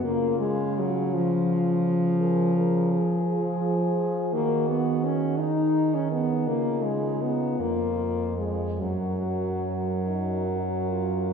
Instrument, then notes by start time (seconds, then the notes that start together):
french horn
0.03 C#3 A#3 F4
0.39 G#3
0.79 F#3
1.14 F3
2.21 G#4 A#4
2.56 G#4 A#4
2.91 G#4
3.27 F3
4.34 D#3 A#3 F#4
4.68 B3
5.04 C#4
5.39 D#4
5.94 C#4
6.11 B3
6.47 C#3 A#3 F4
6.84 G#3
7.22 B3
7.59 F2 A#3 F4
8.38 G#3
8.79 F#2 F#3 F#4 A#4
10.06 D#4
10.48 F#4
10.90 F4